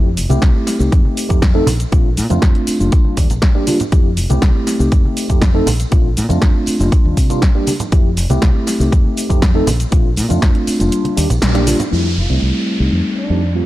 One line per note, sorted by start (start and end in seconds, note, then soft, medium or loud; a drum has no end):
0.00 0.18 F2 loud
0.17 0.26 F1 medium
0.17 open hi-hat loud
0.17 tambourine medium
0.17 shaker medium
0.29 0.38 C2 loud
0.29 0.77 A3 medium
0.29 0.77 C4 medium
0.29 0.77 E4 medium
0.29 0.77 G4 loud
0.29 closed hi-hat soft
0.29 tambourine medium
0.29 high conga medium
0.29 shaker soft
0.42 0.51 C2 medium
0.42 kick loud
0.42 snare loud
0.42 closed hi-hat medium
0.42 shaker soft
0.67 snare soft
0.67 open hi-hat loud
0.67 tambourine medium
0.67 shaker medium
0.79 0.88 C2 loud
0.79 1.27 A3 medium
0.79 1.27 C4 medium
0.79 1.27 D#4 medium
0.79 1.27 G4 medium
0.79 tambourine medium
0.79 shaker soft
0.92 1.01 F2 medium
0.92 kick loud
0.92 closed hi-hat medium
0.92 tambourine soft
0.92 shaker soft
1.05 high conga medium
1.17 open hi-hat loud
1.17 tambourine medium
1.17 shaker medium
1.29 1.61 F2 medium
1.29 1.39 A3 medium
1.29 1.39 C4 medium
1.29 1.40 D#4 medium
1.29 1.40 G4 loud
1.29 kick medium
1.29 closed hi-hat medium
1.29 shaker soft
1.42 kick loud
1.42 snare loud
1.42 closed hi-hat medium
1.42 tambourine soft
1.42 shaker soft
1.54 1.65 A3 medium
1.54 1.65 C4 medium
1.54 1.66 D#4 medium
1.54 1.66 A4 loud
1.67 1.84 A#1 medium
1.67 open hi-hat loud
1.67 tambourine medium
1.67 high conga medium
1.67 low conga medium
1.67 shaker medium
1.80 closed hi-hat soft
1.80 tambourine soft
1.80 shaker soft
1.92 2.19 A#1 loud
1.92 2.08 A3 medium
1.92 2.08 C4 medium
1.92 2.09 D4 medium
1.92 2.09 F4 medium
1.92 kick loud
1.92 closed hi-hat medium
1.92 shaker soft
2.17 2.26 A#2 medium
2.17 open hi-hat loud
2.17 tambourine medium
2.17 shaker medium
2.30 2.38 F2 loud
2.30 2.77 A3 medium
2.30 2.77 C4 medium
2.30 2.77 D4 medium
2.30 2.77 F4 loud
2.30 closed hi-hat soft
2.30 tambourine soft
2.30 high conga medium
2.30 shaker soft
2.42 2.51 F2 medium
2.42 kick loud
2.42 snare loud
2.42 closed hi-hat medium
2.42 shaker soft
2.55 closed hi-hat soft
2.67 muted fingered electric bass stroke soft
2.67 open hi-hat loud
2.67 tambourine medium
2.67 shaker medium
2.80 2.88 F1 medium
2.80 3.15 G3 medium
2.80 3.15 A#3 medium
2.80 3.15 D4 medium
2.80 3.15 F4 medium
2.80 tambourine soft
2.80 shaker soft
2.92 kick loud
2.92 closed hi-hat medium
2.92 tambourine soft
2.92 shaker soft
3.05 high conga medium
3.16 3.26 D#2 loud
3.16 3.27 G3 medium
3.16 3.27 A#3 medium
3.16 3.27 D4 medium
3.16 3.28 G4 medium
3.16 kick medium
3.16 open hi-hat loud
3.16 tambourine medium
3.16 shaker medium
3.30 3.38 A#1 medium
3.30 closed hi-hat soft
3.30 tambourine medium
3.30 low conga medium
3.30 shaker soft
3.42 kick loud
3.42 snare loud
3.42 closed hi-hat medium
3.42 shaker soft
3.54 3.64 G3 medium
3.54 3.64 A#3 medium
3.54 3.64 D4 medium
3.54 3.64 G4 loud
3.66 3.77 G3 medium
3.66 3.77 A#3 medium
3.66 3.77 D4 medium
3.66 3.78 F4 medium
3.66 open hi-hat loud
3.66 tambourine medium
3.66 high conga medium
3.66 shaker medium
3.80 closed hi-hat soft
3.80 tambourine soft
3.80 low conga medium
3.80 shaker soft
3.92 4.19 F2 loud
3.92 4.08 A3 medium
3.92 4.09 C4 medium
3.92 4.09 E4 medium
3.92 4.09 G4 medium
3.92 kick loud
3.92 closed hi-hat medium
3.92 tambourine soft
3.92 shaker soft
4.17 4.26 F1 medium
4.17 open hi-hat loud
4.17 tambourine medium
4.17 shaker medium
4.30 4.38 C2 loud
4.30 4.77 A3 medium
4.30 4.77 C4 medium
4.30 4.77 E4 medium
4.30 4.77 G4 loud
4.30 closed hi-hat soft
4.30 tambourine soft
4.30 high conga medium
4.30 shaker soft
4.42 4.51 C2 medium
4.42 kick loud
4.42 snare loud
4.42 closed hi-hat medium
4.42 shaker soft
4.67 snare soft
4.67 open hi-hat loud
4.67 tambourine medium
4.67 shaker medium
4.79 4.88 C2 medium
4.79 5.27 A3 medium
4.79 5.27 C4 medium
4.79 5.27 D#4 medium
4.79 5.27 G4 medium
4.79 tambourine soft
4.79 shaker soft
4.92 5.01 F2 medium
4.92 kick loud
4.92 closed hi-hat medium
4.92 tambourine soft
4.92 shaker soft
5.05 high conga medium
5.17 open hi-hat loud
5.17 tambourine medium
5.17 shaker medium
5.29 5.60 F2 medium
5.29 5.40 A3 medium
5.29 5.40 C4 medium
5.29 5.40 D#4 medium
5.29 5.40 G4 loud
5.29 kick medium
5.29 closed hi-hat medium
5.29 tambourine soft
5.29 shaker soft
5.42 kick loud
5.42 snare loud
5.42 closed hi-hat medium
5.42 tambourine soft
5.42 shaker soft
5.54 5.65 A3 medium
5.54 5.65 C4 medium
5.54 5.66 D#4 medium
5.54 5.66 A4 loud
5.66 5.84 A#1 medium
5.66 open hi-hat loud
5.66 tambourine medium
5.66 high conga medium
5.66 low conga medium
5.66 shaker medium
5.80 closed hi-hat soft
5.80 tambourine medium
5.80 shaker soft
5.91 6.19 A#1 loud
5.91 6.08 A3 medium
5.91 6.08 C4 medium
5.91 6.08 D4 medium
5.91 6.09 F4 medium
5.91 kick loud
5.91 closed hi-hat medium
5.91 shaker soft
6.17 6.26 A#2 medium
6.17 open hi-hat loud
6.17 tambourine medium
6.17 shaker medium
6.29 6.38 F2 loud
6.29 6.77 A3 medium
6.29 6.77 C4 medium
6.29 6.77 D4 medium
6.29 6.77 F4 loud
6.29 closed hi-hat soft
6.29 tambourine medium
6.29 high conga medium
6.29 shaker soft
6.42 6.51 F2 medium
6.42 kick loud
6.42 snare loud
6.42 closed hi-hat medium
6.42 tambourine soft
6.42 shaker soft
6.66 muted fingered electric bass stroke soft
6.66 open hi-hat loud
6.66 tambourine medium
6.66 shaker medium
6.79 6.88 F1 loud
6.79 7.27 G3 medium
6.79 7.27 A#3 medium
6.79 7.27 D4 medium
6.79 7.27 F4 medium
6.79 tambourine medium
6.79 shaker soft
6.92 kick loud
6.92 closed hi-hat medium
6.92 shaker soft
7.04 7.13 D#2 loud
7.04 high conga medium
7.17 7.48 C3 medium
7.17 kick medium
7.17 open hi-hat loud
7.17 tambourine medium
7.17 shaker medium
7.30 7.40 G3 medium
7.30 7.40 A#3 medium
7.30 7.40 D4 medium
7.30 7.40 F4 loud
7.30 closed hi-hat medium
7.30 tambourine medium
7.30 low conga medium
7.30 shaker soft
7.42 kick loud
7.42 snare loud
7.42 closed hi-hat medium
7.42 tambourine soft
7.42 shaker soft
7.55 7.71 G3 medium
7.55 7.71 A#3 medium
7.55 7.71 D4 medium
7.55 7.71 G4 loud
7.67 open hi-hat loud
7.67 tambourine medium
7.67 high conga medium
7.67 shaker medium
7.79 closed hi-hat medium
7.79 tambourine medium
7.79 low conga medium
7.79 shaker soft
7.92 8.19 F2 loud
7.92 8.09 A3 medium
7.92 8.09 C4 medium
7.92 8.09 E4 medium
7.92 8.09 G4 medium
7.92 kick loud
7.92 closed hi-hat medium
7.92 tambourine soft
7.92 shaker soft
8.17 8.26 F1 medium
8.17 open hi-hat loud
8.17 tambourine medium
8.17 shaker medium
8.29 8.38 C2 loud
8.29 8.77 A3 medium
8.29 8.77 C4 medium
8.29 8.77 E4 medium
8.29 8.77 G4 loud
8.29 closed hi-hat soft
8.29 tambourine soft
8.29 high conga medium
8.29 shaker soft
8.42 kick loud
8.42 snare loud
8.42 closed hi-hat medium
8.42 shaker soft
8.67 snare soft
8.67 open hi-hat loud
8.67 tambourine loud
8.67 shaker medium
8.79 8.88 C2 loud
8.79 9.27 A3 medium
8.79 9.27 C4 medium
8.79 9.27 D#4 medium
8.79 9.27 G4 medium
8.79 tambourine medium
8.79 shaker soft
8.92 9.01 F2 medium
8.92 kick loud
8.92 closed hi-hat medium
8.92 shaker soft
9.05 high conga medium
9.17 open hi-hat loud
9.17 tambourine loud
9.17 shaker medium
9.29 9.61 F2 medium
9.29 9.40 A3 medium
9.29 9.40 C4 medium
9.29 9.40 D#4 medium
9.29 9.40 G4 loud
9.29 kick medium
9.29 closed hi-hat medium
9.29 tambourine medium
9.29 shaker soft
9.42 kick loud
9.42 snare loud
9.42 closed hi-hat medium
9.42 tambourine soft
9.42 shaker soft
9.54 9.66 A3 medium
9.54 9.66 C4 medium
9.54 9.66 D#4 medium
9.54 9.66 A4 loud
9.67 9.84 A#1 medium
9.67 open hi-hat loud
9.67 tambourine loud
9.67 high conga loud
9.67 low conga medium
9.67 shaker medium
9.80 closed hi-hat medium
9.80 tambourine medium
9.80 shaker soft
9.91 10.19 A#1 loud
9.91 10.08 A3 medium
9.91 10.08 C4 medium
9.91 10.08 D4 medium
9.91 10.09 F4 medium
9.91 kick loud
9.91 closed hi-hat medium
9.91 shaker soft
10.16 10.26 A#2 medium
10.16 open hi-hat loud
10.16 tambourine loud
10.16 shaker medium
10.29 10.38 F2 loud
10.29 10.76 A3 medium
10.29 10.77 C4 medium
10.29 10.77 D4 medium
10.29 10.77 F4 loud
10.29 closed hi-hat soft
10.29 tambourine soft
10.29 high conga medium
10.29 shaker soft
10.42 kick loud
10.42 snare loud
10.42 closed hi-hat medium
10.42 shaker soft
10.55 closed hi-hat soft
10.67 muted fingered electric bass stroke soft
10.67 open hi-hat medium
10.67 tambourine medium
10.67 shaker medium
10.79 10.88 F1 loud
10.79 11.14 G3 medium
10.79 11.14 A#3 medium
10.79 11.15 D4 medium
10.79 11.15 F4 medium
10.79 closed hi-hat soft
10.79 tambourine medium
10.79 shaker soft
10.92 closed hi-hat medium
10.92 tambourine soft
10.92 shaker soft
11.05 closed hi-hat soft
11.05 high conga medium
11.16 11.26 D#2 medium
11.16 11.27 G3 medium
11.16 11.27 A#3 medium
11.16 11.27 D4 medium
11.16 11.28 G4 medium
11.16 open hi-hat loud
11.16 tambourine medium
11.16 shaker medium
11.30 11.38 A#1 loud
11.30 closed hi-hat medium
11.30 tambourine medium
11.30 low conga medium
11.30 shaker soft
11.42 11.73 A#1 medium
11.42 snare loud
11.42 closed hi-hat medium
11.42 tambourine soft
11.42 shaker soft
11.54 11.64 G3 loud
11.54 11.64 A#3 medium
11.54 11.64 D4 medium
11.54 11.64 G4 loud
11.54 snare soft
11.54 closed hi-hat soft
11.66 11.77 G3 medium
11.66 11.77 A#3 medium
11.66 11.77 D4 medium
11.66 11.78 F4 medium
11.66 open hi-hat loud
11.66 tambourine medium
11.66 high conga medium
11.66 shaker medium
11.79 closed hi-hat medium
11.79 tambourine medium
11.79 low conga medium
11.79 shaker soft
11.91 12.19 F2 medium
11.91 12.08 G3 medium
11.91 12.08 A3 medium
11.91 12.08 C4 medium
11.91 12.08 E4 medium
11.91 downlifter medium
12.17 12.26 F1 medium
12.17 12.34 F4 medium
12.29 12.38 C2 medium
12.29 12.77 G3 medium
12.29 12.77 A3 medium
12.29 12.77 C4 medium
12.29 12.77 E4 medium
12.42 12.51 C2 medium
12.79 12.88 C2 medium
12.79 13.27 G3 medium
12.79 13.27 A3 medium
12.79 13.27 C4 medium
12.79 13.27 D#4 medium
12.92 13.01 F2 medium
13.17 13.55 D4 medium
13.30 13.61 F2 medium
13.30 13.40 G3 medium
13.30 13.40 A3 medium
13.30 13.40 C4 medium
13.30 13.40 D#4 medium
13.55 13.66 G3 medium
13.55 13.66 A3 medium
13.55 13.66 C4 medium
13.55 13.66 F4 medium